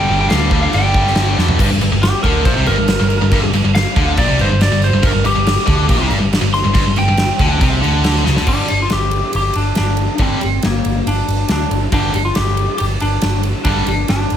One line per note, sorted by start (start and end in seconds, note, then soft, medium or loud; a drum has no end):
0.00 0.20 G5 medium
0.09 0.27 G1 medium
0.09 0.29 G2 medium
0.09 0.30 D3 medium
0.09 0.30 G3 loud
0.21 0.28 G5 medium
0.29 0.66 D2 medium
0.29 0.50 G2 loud
0.29 0.51 D3 loud
0.29 0.52 G3 loud
0.29 0.62 F5 medium
0.29 snare loud
0.29 crash medium
0.51 0.73 G2 medium
0.51 0.74 D3 medium
0.51 0.74 G3 loud
0.51 kick medium
0.63 0.68 F5 medium
0.73 0.91 G1 medium
0.73 0.94 G2 loud
0.73 0.95 D3 loud
0.73 0.95 G3 loud
0.73 1.35 G5 medium
0.73 crash medium
0.94 1.12 G1 medium
0.94 1.15 G2 loud
0.94 1.15 D3 medium
0.94 1.17 G3 loud
0.94 kick medium
1.07 snare soft
1.15 1.34 G1 medium
1.15 1.37 G2 medium
1.15 1.37 D3 loud
1.15 1.38 G3 loud
1.15 snare loud
1.15 crash medium
1.38 1.56 F2 loud
1.38 1.58 G2 medium
1.38 1.58 D3 medium
1.38 1.59 G3 medium
1.38 snare medium
1.48 floor tom medium
1.59 1.70 G1 loud
1.59 1.70 G2 loud
1.59 kick loud
1.59 crash loud
1.71 1.81 G1 medium
1.71 1.80 G2 medium
1.81 1.92 G1 medium
1.81 1.91 G2 medium
1.81 crash medium
1.92 2.12 G1 medium
1.92 2.09 G2 medium
2.03 2.22 G4 loud
2.03 snare loud
2.03 crash medium
2.23 2.44 D2 loud
2.23 2.46 D3 loud
2.23 2.44 A#4 medium
2.23 kick loud
2.23 crash medium
2.45 2.56 A#1 loud
2.45 2.56 A#2 loud
2.45 2.66 C5 medium
2.45 kick loud
2.45 crash medium
2.56 2.67 C2 loud
2.56 2.66 C3 loud
2.66 2.77 G1 medium
2.66 2.77 G2 loud
2.66 3.51 A#4 loud
2.66 crash medium
2.78 2.99 G1 medium
2.78 2.95 G2 medium
2.88 snare loud
2.88 crash medium
2.99 3.20 G1 medium
2.99 3.17 G2 medium
2.99 snare soft
3.10 crash medium
3.21 3.31 G1 medium
3.21 3.31 G2 medium
3.31 3.42 G1 loud
3.31 3.42 G2 loud
3.31 kick loud
3.31 crash medium
3.44 3.53 G1 medium
3.44 3.53 G2 medium
3.53 3.63 G1 medium
3.53 3.64 G2 medium
3.53 crash medium
3.64 3.84 G1 medium
3.64 3.82 G2 medium
3.75 4.17 F5 loud
3.75 snare loud
3.75 crash medium
3.96 4.16 D2 medium
3.96 4.18 D3 loud
3.96 kick loud
3.96 crash medium
4.17 4.28 A#1 loud
4.17 4.28 A#2 loud
4.17 4.39 D5 loud
4.17 kick loud
4.17 crash medium
4.29 4.39 C2 loud
4.29 4.39 C3 loud
4.39 4.50 G1 loud
4.39 4.50 G2 loud
4.39 4.61 C5 medium
4.39 crash medium
4.51 4.71 G1 medium
4.51 4.68 G2 medium
4.61 4.82 D5 medium
4.61 snare loud
4.61 crash medium
4.72 4.92 G1 medium
4.72 4.89 G2 medium
4.72 snare soft
4.82 5.04 C5 medium
4.82 snare soft
4.82 crash medium
4.93 5.03 G1 medium
4.93 5.01 G2 medium
5.02 5.14 G1 loud
5.02 5.12 G2 loud
5.02 kick loud
5.02 crash medium
5.07 5.25 A#4 medium
5.13 5.23 G1 medium
5.13 5.23 G2 medium
5.24 5.35 G1 medium
5.24 5.34 G2 medium
5.24 6.09 G4 loud
5.24 crash medium
5.35 5.56 G1 medium
5.35 5.53 G2 medium
5.47 snare loud
5.47 crash loud
5.66 5.88 D2 loud
5.66 5.88 D3 loud
5.66 kick loud
5.66 crash medium
5.88 6.00 A#1 loud
5.88 5.99 A#2 loud
5.88 kick loud
5.88 crash medium
6.00 6.11 C2 loud
6.00 6.10 C3 loud
6.09 6.22 G1 medium
6.09 6.18 G2 loud
6.09 crash medium
6.20 6.41 G1 medium
6.20 6.38 G2 medium
6.33 snare loud
6.33 crash medium
6.41 6.63 G1 medium
6.41 6.60 G2 medium
6.54 6.96 C6 loud
6.54 snare soft
6.54 crash medium
6.64 6.74 G1 medium
6.64 6.73 G2 medium
6.74 6.85 G1 loud
6.74 6.85 G2 loud
6.74 kick loud
6.74 crash medium
6.86 6.96 G1 medium
6.86 6.96 G2 medium
6.96 7.08 G1 medium
6.96 7.07 G2 medium
6.96 7.81 G5 loud
6.96 crash medium
7.08 7.29 G1 medium
7.08 7.25 G2 medium
7.17 snare loud
7.17 crash medium
7.39 7.60 D2 medium
7.39 7.60 D3 loud
7.39 kick loud
7.39 crash medium
7.61 7.82 C2 loud
7.61 7.81 C3 loud
7.61 kick loud
7.61 crash medium
7.82 8.24 D2 medium
7.82 8.25 D3 loud
7.82 crash medium
8.04 snare loud
8.04 crash medium
8.16 snare soft
8.25 8.37 C#2 loud
8.25 8.36 C#3 loud
8.25 snare medium
8.37 8.47 D2 loud
8.37 8.46 D3 loud
8.37 snare medium
8.46 8.62 G1 medium
8.46 8.64 G2 medium
8.46 8.65 D3 loud
8.46 8.65 G3 loud
8.46 8.82 D4 loud
8.46 kick loud
8.46 crash loud
8.68 8.85 G1 medium
8.68 ride medium
8.82 8.92 F4 medium
8.90 9.21 G1 medium
8.90 9.35 G4 loud
8.90 snare loud
8.90 ride medium
9.11 ride medium
9.33 9.49 G1 medium
9.33 9.55 G4 loud
9.33 ride medium
9.54 9.70 G1 medium
9.54 9.76 D4 medium
9.54 ride medium
9.75 10.07 G1 medium
9.75 10.22 D4 medium
9.75 snare loud
9.75 ride medium
9.97 ride medium
10.18 10.34 G1 medium
10.18 10.37 G2 medium
10.18 10.38 D3 medium
10.18 10.38 G3 loud
10.18 10.64 C4 medium
10.18 kick loud
10.18 ride medium
10.41 10.58 G1 medium
10.41 ride medium
10.62 10.79 G1 medium
10.62 11.09 A#3 medium
10.62 snare loud
10.62 ride medium
10.85 11.00 G1 medium
10.85 ride medium
11.07 11.21 G1 medium
11.07 11.50 D4 loud
11.07 ride medium
11.28 11.43 G1 medium
11.28 ride medium
11.48 11.64 D2 medium
11.48 11.81 D4 medium
11.48 snare loud
11.48 ride medium
11.71 11.86 G1 medium
11.71 ride medium
11.92 12.07 G1 medium
11.92 12.10 G2 medium
11.92 12.11 D3 loud
11.92 12.11 G3 medium
11.92 12.24 D4 medium
11.92 kick loud
11.92 ride medium
12.14 12.29 G1 medium
12.14 ride medium
12.25 12.36 F4 medium
12.35 12.66 G1 loud
12.35 12.77 G4 medium
12.35 snare loud
12.35 ride loud
12.57 ride medium
12.78 12.95 G1 medium
12.78 12.84 G4 loud
12.78 ride loud
13.00 13.16 G1 medium
13.00 13.41 D4 medium
13.00 ride medium
13.22 13.52 G1 medium
13.22 snare loud
13.22 ride loud
13.43 ride medium
13.65 13.80 G1 medium
13.65 13.84 G2 loud
13.65 13.84 D3 medium
13.65 13.84 G3 loud
13.65 14.08 D4 loud
13.65 kick loud
13.65 ride loud
13.86 14.02 G1 medium
13.86 ride medium
14.08 14.24 G1 medium
14.08 14.37 D4 loud
14.08 snare loud
14.08 ride medium
14.30 14.37 G1 medium
14.30 ride medium